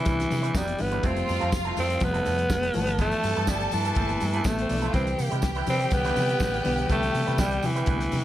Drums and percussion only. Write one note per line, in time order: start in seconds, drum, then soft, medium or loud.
0.05 kick loud
0.05 closed hi-hat medium
0.05 tambourine medium
0.05 muted conga soft
0.20 snare soft
0.20 closed hi-hat medium
0.31 open hi-hat medium
0.31 tambourine medium
0.31 low conga medium
0.44 closed hi-hat medium
0.55 kick loud
0.55 snare loud
0.55 tambourine loud
0.55 high conga medium
0.67 closed hi-hat medium
0.67 high conga medium
0.78 open hi-hat medium
0.78 tambourine soft
0.92 closed hi-hat medium
0.92 high conga medium
1.03 kick loud
1.03 closed hi-hat medium
1.03 tambourine soft
1.03 muted conga medium
1.16 closed hi-hat medium
1.28 open hi-hat medium
1.28 tambourine medium
1.28 muted conga medium
1.41 closed hi-hat soft
1.52 kick loud
1.52 snare loud
1.52 tambourine loud
1.52 high conga medium
1.65 closed hi-hat soft
1.77 open hi-hat medium
1.77 tambourine medium
1.77 low conga medium
1.90 closed hi-hat soft
2.00 kick loud
2.00 closed hi-hat medium
2.00 tambourine medium
2.00 muted conga soft
2.14 closed hi-hat soft
2.25 open hi-hat medium
2.25 tambourine medium
2.25 low conga medium
2.39 closed hi-hat medium
2.50 kick loud
2.50 snare loud
2.50 tambourine loud
2.50 high conga medium
2.63 closed hi-hat medium
2.63 high conga medium
2.74 open hi-hat medium
2.74 tambourine soft
2.87 closed hi-hat medium
2.87 high conga medium
2.99 kick loud
2.99 closed hi-hat medium
2.99 tambourine soft
2.99 muted conga medium
3.11 closed hi-hat medium
3.23 open hi-hat medium
3.23 tambourine medium
3.23 muted conga medium
3.36 closed hi-hat soft
3.47 kick loud
3.47 snare loud
3.47 tambourine loud
3.47 high conga medium
3.60 closed hi-hat soft
3.71 open hi-hat medium
3.71 tambourine medium
3.71 low conga medium
3.85 closed hi-hat medium
3.95 kick loud
3.95 closed hi-hat medium
3.95 tambourine medium
3.95 muted conga soft
4.09 closed hi-hat soft
4.20 open hi-hat medium
4.20 tambourine medium
4.20 low conga medium
4.33 closed hi-hat medium
4.44 kick loud
4.44 snare loud
4.44 tambourine loud
4.44 high conga medium
4.58 closed hi-hat medium
4.58 high conga medium
4.69 open hi-hat medium
4.82 closed hi-hat medium
4.82 high conga medium
4.93 kick loud
4.93 closed hi-hat medium
4.93 tambourine soft
4.93 muted conga medium
5.07 closed hi-hat soft
5.18 open hi-hat medium
5.18 tambourine medium
5.18 muted conga medium
5.32 closed hi-hat soft
5.42 kick loud
5.42 snare loud
5.42 tambourine loud
5.42 high conga medium
5.55 closed hi-hat soft
5.66 open hi-hat medium
5.66 tambourine medium
5.66 low conga medium
5.80 closed hi-hat medium
5.91 kick loud
5.91 closed hi-hat medium
5.91 tambourine medium
6.05 snare soft
6.05 closed hi-hat soft
6.16 open hi-hat medium
6.16 tambourine medium
6.16 low conga medium
6.29 closed hi-hat medium
6.40 kick loud
6.40 snare loud
6.40 tambourine loud
6.40 high conga medium
6.53 closed hi-hat medium
6.53 high conga medium
6.64 open hi-hat medium
6.64 tambourine soft
6.78 closed hi-hat soft
6.78 high conga medium
6.89 kick medium
6.89 closed hi-hat medium
6.89 tambourine soft
6.89 muted conga medium
7.03 closed hi-hat soft
7.14 open hi-hat medium
7.14 tambourine medium
7.14 muted conga medium
7.27 closed hi-hat soft
7.38 kick loud
7.38 snare loud
7.38 tambourine loud
7.38 high conga medium
7.51 closed hi-hat soft
7.62 open hi-hat medium
7.62 tambourine soft
7.62 low conga medium
7.76 closed hi-hat medium
7.86 kick loud
7.86 closed hi-hat medium
7.86 tambourine soft
7.86 muted conga soft
8.00 snare soft
8.00 closed hi-hat soft
8.11 open hi-hat medium
8.11 tambourine medium
8.11 low conga medium